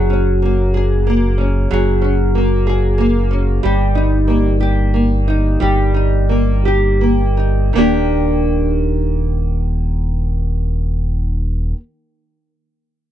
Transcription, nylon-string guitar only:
Already playing: F#3 G#4
0.10 C#4
0.42 A#3
0.74 G#4
1.07 A#3
1.38 C#4
1.71 F#3 G#4
2.02 C#4
2.35 A#3
2.67 G#4
2.98 A#3
3.31 C#4
3.63 G3 G4
3.95 D#4
4.28 A#3
4.60 G4
4.94 A#3
5.28 D#4
5.60 G3 G4
5.94 D#4
6.29 A#3
6.65 G4
7.01 A#3
7.37 D#4
7.73 D#3 A#3
7.77 D4 G4

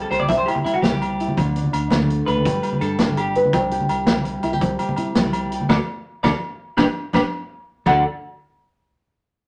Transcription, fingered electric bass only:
0.11 C2
0.29 C2
0.65 C3
0.83 C2
1.37 D2
1.73 D2
1.92 D2
2.28 D2
2.45 G1
2.81 G2
2.99 G1
3.53 C2
3.89 C2
4.08 C2
4.44 C2
4.62 C2
4.98 C3
5.16 C2
5.69 D2
6.24 D2
6.78 G1
7.14 G1
7.86 D2

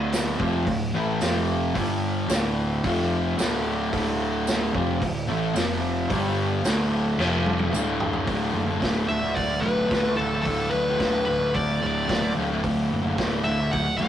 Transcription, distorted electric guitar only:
Already playing: D2 A2 D3
0.39 F2 C3 F3
0.67 D2 A2
0.94 A2 E3 A3
1.20 F2 C3 F3
1.75 G2 D3 G3
2.30 D2 A2 D3
2.84 F2 C3 F3
3.37 D2 A2 D3
3.92 D2 A2 D3
4.73 F2 C3 F3
5.01 D2 A2
5.27 A2 E3 A3
5.55 F2 C3 F3
6.09 G2 D3 G3
6.64 D2 A2 D3
7.19 F2 C3 F3
7.72 D2 A2 D3
8.26 D2 A2
8.31 D3
8.66 D3
8.70 A2
8.79 D2 A2
8.83 D3
9.06 D2 A2
9.11 D3
9.22 muted distorted electric guitar stroke
9.61 D2 A2
9.66 D3
9.89 D2 A2
9.94 D3
10.05 muted distorted electric guitar stroke
10.16 D2 A2
10.21 D3
10.31 D3
10.35 A2
10.43 D2 A2
10.48 D3
10.85 D3
10.90 A2
10.98 D2 A2
11.02 D3
11.26 D2 A2
11.30 D3
11.40 muted distorted electric guitar stroke
11.80 D2 A2 D3
12.06 D2 A2
12.11 D3
12.21 muted distorted electric guitar stroke
12.34 D2 A2
12.38 D3
12.48 D3
12.53 A2
12.61 D2 A2
12.65 D3
13.03 D3
13.07 A2
13.15 D2 A2
13.20 D3
13.43 D2 A2
13.48 D3
13.59 muted distorted electric guitar stroke
13.98 D2 A2 D3

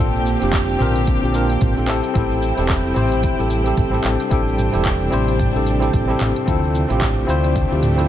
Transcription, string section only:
Already playing: D3 A#3 C4
0.00 G4
1.88 C3 G3 E4
4.04 D4
6.47 F3 A3 D4

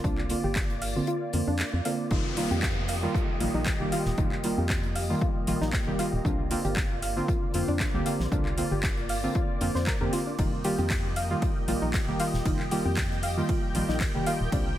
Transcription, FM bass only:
0.04 C2
0.44 G1
1.34 F2
1.48 F2
1.73 F2
2.11 F1
2.51 F2
3.41 A#1
3.54 A#1
3.80 F1
4.06 D#1
4.18 F1
4.58 F2
5.47 A#1
5.61 A#1
5.87 F1
6.13 D#1
6.25 C2
6.65 G1
7.54 F2
7.68 F2
7.94 C2
8.20 A#1
8.32 C2
8.71 G1
9.61 F2
9.75 F2
10.01 F2
10.39 F1
10.79 F2
11.68 A#1
11.82 A#1
12.08 F1
12.34 D#1
12.46 F1
12.86 F2
13.75 A#1
13.89 A#1
14.15 F1
14.41 D#1
14.52 C2

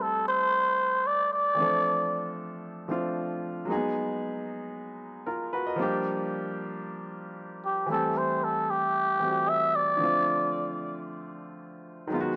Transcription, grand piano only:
Already playing: G3 A3 C4 E4 A4
1.55 E3 A3 C4
1.60 F3 D4 A4
2.88 F3 A3 C4 D4 F4
3.65 F#3 G#3 A#3
3.70 D#4 G#4
3.75 B3
5.26 F4 A#4
5.53 F#4 B4
5.67 A#4 D#5
5.76 F3 G3 A#3
5.81 D4 G4
7.86 E3 G3 A3
7.91 C4 G4
9.20 E3 G3 A3 C4 F#4
9.29 G4
9.97 D3 F3 A3
10.02 C4 F4
12.07 D#3 F#3 G#3
12.13 B3 F4
12.21 F#4

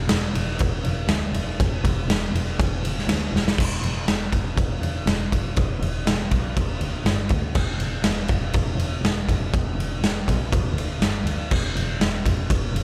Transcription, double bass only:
0.07 E1
0.33 E1
0.60 E1
0.84 E1
1.08 D2
1.32 E1
1.60 E1
1.84 E1
2.06 E1
2.32 E1
2.59 E1
2.82 E1
3.07 D2
3.31 E1
3.59 E1
3.81 E1
4.06 E1
4.33 E1
4.57 E1
4.80 E1
5.06 E1
5.32 E1
5.58 E1
5.80 E1
6.06 E1
6.31 B1
6.57 E1
6.80 D2
7.04 G1
7.30 D2
7.55 E1
7.77 E1
8.02 E1
8.29 E1
8.54 E1
8.76 E1
9.01 E1
9.29 E1
9.54 E1
9.75 E1
9.99 E1
10.28 B1
10.53 E1
10.72 D2
10.99 G1
11.24 D2
11.52 E1
11.75 E1
12.00 E1
12.25 E1
12.50 E1
12.72 E1

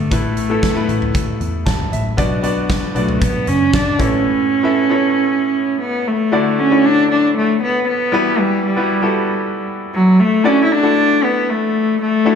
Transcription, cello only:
Already playing: A3
2.96 A3
3.23 B3
3.48 C#4
3.74 D4
4.00 C#4
5.81 B3
6.08 A3
6.59 C#4
6.85 D4
7.11 D4
7.37 A3
7.63 B3
7.88 B3
8.39 G3
8.66 G3
9.94 F#3
10.20 A3
10.46 C#4
10.64 E4
10.72 D4
11.24 B3
11.50 A3
12.02 A3

